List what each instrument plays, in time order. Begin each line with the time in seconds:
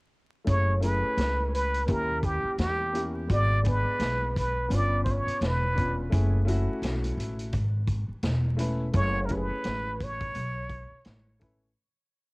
0.44 upright bass F#1, upright piano A3 C#4 E4 G#4, kick, closed hi-hat
0.49 muted trumpet C#5
0.80 upright piano A3 C#4 E4 G#4, muted trumpet B4, closed hi-hat
1.03 muted upright bass stroke
1.17 upright bass C#2, snare, closed hi-hat
1.54 muted trumpet B4, closed hi-hat
1.74 closed hi-hat
1.86 upright bass D#2, upright piano A#3 C#4 E4 G4, kick, closed hi-hat
1.90 muted trumpet A#4
2.23 muted trumpet G4, kick, closed hi-hat
2.44 muted upright bass stroke
2.58 upright bass E2, muted trumpet G4, snare, closed hi-hat
2.92 upright piano A#3 C#4 E4 G4, closed hi-hat
3.27 upright bass G#1, upright piano G#3 B3 D4 F#4, kick, closed hi-hat
3.32 muted trumpet D5
3.62 upright piano G#3 B3 D4 G#4, closed hi-hat
3.66 muted trumpet B4, kick
3.85 muted upright bass stroke
3.99 upright bass B1, snare, closed hi-hat
4.36 muted trumpet B4, kick, closed hi-hat
4.68 upright bass G1, upright piano B3 C#4 D4 F4, closed hi-hat
4.75 muted trumpet D5
5.04 muted trumpet C5, kick, closed hi-hat
5.11 muted trumpet C#5
5.26 muted upright bass stroke, closed hi-hat
5.41 upright bass E1, snare, closed hi-hat
5.45 muted trumpet B4
5.74 upright piano B3 C#4 D4 F4, kick, closed hi-hat
6.10 upright bass F#1, upright piano A3 C#4 E4 G#4, kick, closed hi-hat
6.45 upright piano A3 C#4 E4 F#4, closed hi-hat
6.68 muted upright bass stroke
6.82 upright bass B1, snare, closed hi-hat
7.04 closed hi-hat
7.17 upright bass A1, closed hi-hat
7.39 closed hi-hat
7.53 upright bass G#1, kick, closed hi-hat
7.87 kick, closed hi-hat
8.09 muted upright bass stroke
8.23 upright bass E1, snare, closed hi-hat
8.57 upright piano A3 C#4 E4 B4, closed hi-hat
8.92 upright bass F#1, upright piano A3 C#4 E4 G#4, kick, closed hi-hat
8.96 muted trumpet C#5
9.26 upright piano A3 C#4 E4, muted trumpet A#4, closed hi-hat
9.31 upright piano G4, muted trumpet B4, kick
9.37 upright piano G#4
9.50 muted upright bass stroke
9.64 upright bass A1, snare, closed hi-hat
10.01 muted trumpet C#5, kick, closed hi-hat
10.20 kick, closed hi-hat
10.35 upright bass B1, closed hi-hat
10.69 kick, closed hi-hat
10.91 muted upright bass stroke
11.05 upright bass A1, snare, closed hi-hat
11.39 upright piano A3 C#4 E4 B4, kick, closed hi-hat